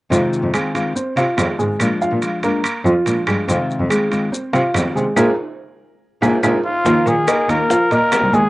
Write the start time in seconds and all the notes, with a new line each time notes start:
0.10 F2 C3 D#3 F3 G#3 C4 F4, high timbale, maracas
0.33 maracas
0.43 F2
0.54 D#3 G#3 C4 F4 G#4, high timbale, claves, maracas
0.75 D#3 G#3 C4 F4, high timbale, maracas
0.95 C4 C5, muted nylon-string guitar stroke, maracas
1.16 C3 F4 F5, high timbale, maracas
1.37 F2 D#3 G#3 C4 F4, high timbale, low timbale, claves, maracas
1.59 G#2 G#3 G#4, maracas
1.80 A#2 F3 G#3 D4 F4, high timbale, claves, maracas
2.01 F4 F5, maracas
2.11 A#2
2.22 F3 G#3 D4 F4, high timbale, maracas
2.43 G#3 A#3 D4 F4 A#4, high timbale, maracas
2.64 muted nylon-string guitar stroke, high timbale, claves, maracas
2.85 F2 F3 F4, maracas
3.06 A#2 F3 G#3 D4 F4, high timbale, maracas
3.27 G2 G#3 G#4, high timbale, claves, maracas
3.48 F2 C3 D#3 F3 G#3 C4 F4, high timbale, maracas
3.70 maracas
3.80 F2
3.90 D#3 G#3 C4 F4 G#4, high timbale, claves, maracas
4.10 D#3 G#3 C4 F4, high timbale, maracas
4.32 C4 C5, muted nylon-string guitar stroke, maracas
4.53 C3 F4 F5, high timbale, maracas
4.74 F2 D#3 G#3 C4 F4, high timbale, low timbale, claves, maracas
4.96 C3 G#3 G#4, maracas
5.16 A#2 G#3 A#3 D4 F4 G#4 A#4, high timbale, claves, maracas
6.22 A#2 G#3 A#3 D4 F4 G#4 A#4, high timbale, claves, maracas
6.43 A#2 G#3 A#3 D4 F4 G#4 A#4, high timbale, claves, maracas
6.65 F4
6.85 D#2 D#3 F3 A#3 D#4 F4 A#4 F5, high bongo, high timbale, maracas
7.06 A#2 G#4, high bongo, maracas
7.27 A#3 D#4 F4 A#4 D#5, high bongo, high timbale, claves, maracas
7.48 D#2 A#3 D#4 F4 A#4, high bongo, high timbale, maracas
7.70 F3 F4 F5, muted nylon-string guitar stroke, high bongo, maracas
7.91 A#2 A#3 A#4 D#5, high bongo, high timbale, maracas
8.12 A#3 D#4 F4 A#4, high bongo, low bongo, high timbale, low timbale, claves, maracas
8.22 C2
8.32 D#2 G#3 G#4 G#5, maracas